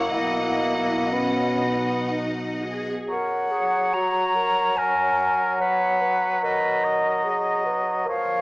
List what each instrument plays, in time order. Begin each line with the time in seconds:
Already playing: double bass section F#1, cello section F#2, bassoon A#3, viola section E4, violin section C#5 F#5
0.12 double bass section B1, cello section B2, bassoon A#3, violin section D#5
1.13 bassoon B3, viola section C#4
1.64 viola section D#4
2.63 viola section G#4
3.08 bassoon F#3, clarinet A#4, oboe C#5, flute F#5
3.51 clarinet G#4
3.93 clarinet F#4, flute A#5
4.35 clarinet A#4
4.77 oboe A#4, clarinet C#5, flute G#5
5.59 oboe B4, clarinet C#5, flute F#5
6.01 clarinet B4
6.42 clarinet A#4, oboe B4, flute D#5
6.84 oboe D#5
7.25 clarinet G#4
7.66 clarinet B4
8.06 bassoon F3, clarinet A#4, oboe C#5, flute F5